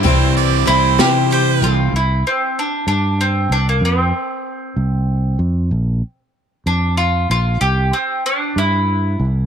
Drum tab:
HH |xxxxxx|------|------|------|
SD |---o--|------|------|------|
BD |o-----|------|------|------|

HH |------|
SD |------|
BD |------|